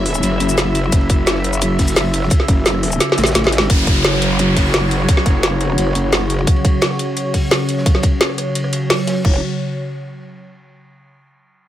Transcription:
Already playing: F#1 C#3 F#3 E4 E5
0.06 cross-stick, open hi-hat, ride, cabasa
0.14 cabasa
0.23 F#1, closed hi-hat, ride, cabasa
0.32 cross-stick
0.40 F#1, closed hi-hat, ride, cabasa
0.49 cabasa
0.58 snare, closed hi-hat, ride, cabasa
0.75 closed hi-hat, ride, cabasa
0.84 ride
0.92 F#1, kick, closed hi-hat, ride, cabasa
1.01 ride
1.09 kick, closed hi-hat, ride, cabasa
1.26 snare, closed hi-hat, ride, cabasa
1.35 cross-stick, snare
1.44 closed hi-hat, ride, cabasa
1.53 cabasa
1.61 closed hi-hat, ride, cabasa
1.79 F#1, kick, closed hi-hat, open hi-hat, cabasa
1.88 cabasa
1.96 snare, closed hi-hat, ride, cabasa
2.13 closed hi-hat, ride, cabasa
2.22 snare
2.30 kick, closed hi-hat, ride, cabasa
2.40 snare
2.48 F#1, kick, closed hi-hat, ride, cabasa
2.66 snare, closed hi-hat, ride, cabasa
2.74 cross-stick
2.83 cross-stick, open hi-hat, ride, cabasa
2.92 cabasa
3.00 snare, closed hi-hat, ride, cabasa
3.09 snare, ride
3.17 A1, snare, closed hi-hat, ride, cabasa
3.24 snare, ride, cabasa
3.27 snare
3.31 snare, ride
3.35 A1, snare, closed hi-hat, ride, cabasa
3.44 snare, ride
3.47 snare
3.52 snare, closed hi-hat, ride, cabasa
3.58 snare, ride
3.61 snare
3.70 F#1 C#3 F#3 F#4 C#5, kick, closed hi-hat, ride, downlifter
3.79 ride
3.87 kick, closed hi-hat, ride
4.04 snare, closed hi-hat, ride
4.13 cross-stick, snare
4.22 closed hi-hat, ride
4.39 closed hi-hat, ride
4.57 F#1, kick, closed hi-hat, open hi-hat
4.74 snare, closed hi-hat, ride
4.91 closed hi-hat, ride
5.08 kick, closed hi-hat, ride
5.17 snare
5.26 F#1, kick, closed hi-hat, ride
5.43 snare, closed hi-hat, ride
5.52 cross-stick
5.61 cross-stick, closed hi-hat, ride
5.78 F#1, closed hi-hat, ride
5.87 cross-stick
5.95 F#1, closed hi-hat, ride
6.12 snare, closed hi-hat, ride
6.30 closed hi-hat, ride
6.39 ride
6.47 kick, closed hi-hat, ride
6.56 ride
6.65 kick, closed hi-hat, ride
6.81 snare, closed hi-hat, ride
6.91 cross-stick, snare
6.99 closed hi-hat, ride
7.16 closed hi-hat, ride
7.34 kick, closed hi-hat, open hi-hat
7.51 snare, closed hi-hat, ride
7.69 closed hi-hat, ride
7.78 snare
7.86 kick, closed hi-hat, ride
7.95 snare
8.03 kick, closed hi-hat, ride
8.21 snare, closed hi-hat, ride
8.29 cross-stick
8.38 cross-stick, closed hi-hat, ride
8.55 closed hi-hat, ride
8.64 cross-stick
8.73 closed hi-hat, ride
8.90 snare, closed hi-hat, open hi-hat
9.07 snare, closed hi-hat, ride
9.25 F#1 C#3 F#3 F#4 C#5, kick, crash

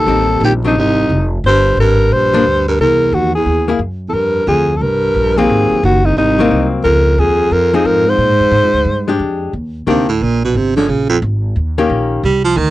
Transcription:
Already playing: D#2 A4
0.06 A1 G3 C4 D#4
0.41 A#1 D#2
0.45 G4
0.64 C2 F#3 C4 D4 D#4
0.75 G#1 C2
0.80 D#4
1.10 F1
1.44 G1 G2 C5
1.77 G#1 G2 A#4
2.11 A#1 G2 C5
2.33 F3 A#3 D4
2.44 D2
2.68 G2 A#4
2.79 C2 E2 A#4
3.12 D#2 E2 F#4
3.35 E2 G#4
3.46 D#2
3.68 A#3 E4 G#4
3.79 F#2
4.09 E2 A4
4.13 F2 G2 A#4
4.46 D2 F2 G#4
4.76 F2 A4
4.81 C2 G2 A#4
5.14 A#1
5.36 D#2 F#3 A#3 C4 G#4
5.50 G#1
5.71 muted upright bass stroke
5.82 F#1 D#2 F#4
6.05 C2 D#4
6.16 G#1 C2 D#4
6.39 F#3 A#3 C4
6.51 C2
6.83 C#2 F2 A#4
7.17 D#2 F2 G#4
7.51 F2 A#4
7.73 F2 F3 C4 D#4 G#4
7.85 F2 G#2 A#4
8.07 G#2 C5
8.18 A#2
8.30 G#2
8.40 F2
8.51 G#2
8.63 F2
8.74 D2
8.85 G2
9.08 G#3 D4 G4
9.19 F2
9.53 D#2
9.87 D2 C3 D#3 A#3 D4 G4
10.09 A2
10.21 A#1 A#2
10.44 B2
10.54 G1 C3
10.76 D3 F3 G#3 C#4
10.88 A#1 C#3
11.09 F2
11.22 G#1
11.56 D#2
11.78 D#3 A#3 C#4 G4
11.90 A#1
12.23 C2 G3
12.44 F3
12.57 D2 D#3

